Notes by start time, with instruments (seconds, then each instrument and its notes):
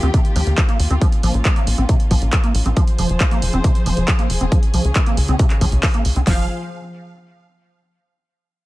Already playing: string section D#3 A#3 F4 G4
0.03 analog synth bass D#2, acid bass C4, closed hi-hat
0.14 acid bass C3, kick, closed hi-hat
0.25 closed hi-hat
0.36 analog synth bass D#2, acid bass F3, open hi-hat
0.47 analog synth bass D#2, closed hi-hat
0.58 acid bass F3, kick, clap, closed hi-hat
0.69 acid bass A#3, closed hi-hat
0.80 analog synth bass D#2, open hi-hat
0.91 analog synth bass D#2, acid bass C4, closed hi-hat
1.01 acid bass F3, string section C#4, kick, closed hi-hat
1.12 closed hi-hat
1.23 analog synth bass A#1, acid bass F3, open hi-hat
1.34 analog synth bass A#1, closed hi-hat
1.45 acid bass G#3, kick, clap, closed hi-hat
1.56 acid bass A#3, closed hi-hat
1.67 analog synth bass A#1, open hi-hat
1.78 analog synth bass A#1, acid bass C4, closed hi-hat
1.89 acid bass C3, kick, closed hi-hat
2.00 closed hi-hat
2.11 analog synth bass A#1, acid bass F3, kick, open hi-hat
2.22 analog synth bass A#1, closed hi-hat
2.33 acid bass F3, kick, clap, closed hi-hat
2.44 acid bass A#3, closed hi-hat
2.55 analog synth bass A#1, open hi-hat
2.66 analog synth bass A#1, acid bass C4, closed hi-hat
2.77 acid bass F3, string section F3 G#4 C5, kick, closed hi-hat
2.88 closed hi-hat
2.98 analog synth bass F1, acid bass F3, open hi-hat
3.09 analog synth bass F1, closed hi-hat
3.20 acid bass G#3, kick, clap, closed hi-hat
3.31 acid bass A#3, closed hi-hat
3.42 analog synth bass F1, open hi-hat
3.53 analog synth bass F1, acid bass C4, closed hi-hat
3.64 acid bass C3, kick, closed hi-hat
3.75 closed hi-hat
3.86 analog synth bass F1, acid bass F3, open hi-hat
3.97 analog synth bass F1, closed hi-hat
4.08 acid bass F3, kick, clap, closed hi-hat
4.19 acid bass A#3, closed hi-hat
4.30 analog synth bass F1, open hi-hat
4.41 analog synth bass F1, acid bass C4, closed hi-hat
4.52 string section C#3 C#4, acid bass F3, kick, closed hi-hat
4.63 closed hi-hat
4.74 analog synth bass C#2, acid bass F3, open hi-hat
4.85 analog synth bass C#2, closed hi-hat
4.96 acid bass G#3, kick, clap, closed hi-hat
5.06 acid bass A#3, closed hi-hat
5.17 analog synth bass C#2, open hi-hat
5.28 analog synth bass C#2, acid bass C4, closed hi-hat
5.39 acid bass C3, kick, closed hi-hat
5.50 clap, closed hi-hat
5.61 analog synth bass C#2, acid bass F3, kick, open hi-hat
5.72 analog synth bass C#2, closed hi-hat
5.83 acid bass F3, kick, clap, open hi-hat
5.94 acid bass A#3, closed hi-hat
6.05 analog synth bass C#2, open hi-hat
6.16 analog synth bass C#2, acid bass C4, closed hi-hat
6.27 analog synth bass F1, string section F3 F4 G#4 C5, acid bass F3, supersaw synth F5, kick, snare, open hi-hat